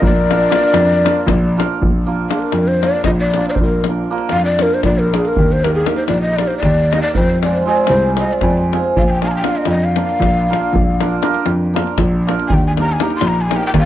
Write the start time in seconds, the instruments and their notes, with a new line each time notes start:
0.02 grand piano A#1, trumpet A#4, ney D5, davul low
0.29 hammered dulcimer A#3 D4 F4 A#4, davul high
0.41 davul high
0.50 hammered dulcimer A#3 D4 F4 A#4, davul high
0.63 davul high
0.73 grand piano F2, davul high
0.92 davul high
1.03 hammered dulcimer A#3 D4 F4 A#4, davul high
1.27 grand piano A#1, davul high, davul low
1.57 hammered dulcimer A#3 D4 F4 A#4, davul high
1.82 grand piano A#1, davul low
2.07 hammered dulcimer A#3 D4 F4 A#4
2.29 hammered dulcimer A#3 D4 F4 A#4, ney G#4, davul high
2.40 ney A#4, davul high
2.52 grand piano F2, davul high
2.68 ney C5
2.82 hammered dulcimer A#3 D4 F4 A#4, ney D5, davul high
2.94 davul high
3.04 grand piano A#1, ney D#5, davul high, davul low
3.20 ney D5
3.34 hammered dulcimer A#3 D4 F4, davul high
3.38 hammered dulcimer A#4
3.46 ney C5, davul high
3.51 ney C5 D5
3.56 davul low
3.61 grand piano A#1, ney A#4
3.84 hammered dulcimer A#3, davul high
3.89 hammered dulcimer D4 F4 A#4
4.11 hammered dulcimer A#3 D4 F4 A#4
4.18 davul high
4.29 grand piano F2, ney F5, davul high
4.45 ney D5
4.59 hammered dulcimer A#3 D4 F4 A#4, ney A#4, davul high
4.70 ney C5, davul high
4.83 grand piano A#1, ney D5, davul high, davul low
4.99 ney A#4
5.13 hammered dulcimer A#3 D4 F4 A#4, ney G#4, davul high
5.25 ney A#4, davul high
5.37 grand piano D#2, davul low
5.52 ney C5
5.63 hammered dulcimer A#3 D#4 G4 A#4, ney A#4, davul high
5.75 ney G#4
5.86 hammered dulcimer A#3 D#4 G4 A#4, ney A#4, davul high
5.96 ney C5, davul high
6.08 grand piano A#1, ney D5, davul high
6.22 ney D#5
6.36 hammered dulcimer A#3, ney D5, davul high
6.41 hammered dulcimer D#4 G4 A#4
6.47 ney C5, davul high
6.58 ney D5
6.63 grand piano D#2, davul high, davul low
6.92 hammered dulcimer A#3 D#4 G4 A#4, ney D#5, davul high
7.02 ney D5, davul high
7.15 grand piano F2, ney C5, davul low
7.30 davul high
7.43 hammered dulcimer G#3 C4 F4 G#4, ney D5, davul high
7.53 davul high
7.65 hammered dulcimer G#3 C4 F4 G#4, ney D#5
7.77 ney D5
7.87 grand piano C2, ney C5, davul high
8.17 hammered dulcimer G#3 C4 F4, ney D#5, davul high
8.21 hammered dulcimer G#4
8.33 ney D5
8.41 grand piano F2, davul high, davul low
8.57 davul high
8.72 hammered dulcimer G#3 C4 F4 G#4, davul high
8.84 davul high
8.96 grand piano A#1, ney F5, davul low
9.07 ney G5 G#5
9.22 hammered dulcimer A#3 D4 F4 A#4, ney G#5, davul high
9.28 ney G#5 A#5
9.36 ney G5
9.43 hammered dulcimer A#3 D4 F4 A#4, ney F5, davul high
9.55 ney D#5, davul high
9.65 grand piano F2, davul high
9.70 ney D#5
9.85 ney F5
9.96 hammered dulcimer A#3 D4 F4 A#4, davul high
10.09 davul high
10.20 grand piano A#1, davul high, davul low
10.50 hammered dulcimer A#3 D4 F4 A#4, davul high
10.73 grand piano A#1, davul low
11.01 hammered dulcimer A#3 D4 F4 A#4, davul high
11.22 hammered dulcimer A#3 D4 F4 A#4, davul high
11.34 davul high
11.46 grand piano F2, davul high
11.74 hammered dulcimer A#3 D4 F4 A#4, davul high
11.87 davul high
11.98 grand piano A#1, davul high, davul low
12.27 hammered dulcimer A#3 D4 F4 A#4, davul high
12.39 davul high
12.48 grand piano D#2, ney G#5, davul low
12.54 ney G5
12.67 ney G#5
12.77 hammered dulcimer A#3 D#4 G4 A#4, ney A#5, davul high
12.92 ney G#5
13.00 hammered dulcimer A#3 D#4 G4 A#4, ney A#5, davul high
13.10 davul high
13.16 ney C6
13.21 grand piano A#1, davul high
13.27 ney A#5
13.41 ney G#5
13.51 hammered dulcimer A#3 D#4 G4, davul high
13.55 hammered dulcimer A#4, ney G5
13.63 ney G5, davul high
13.74 grand piano D#2, davul high, davul low
13.79 ney F5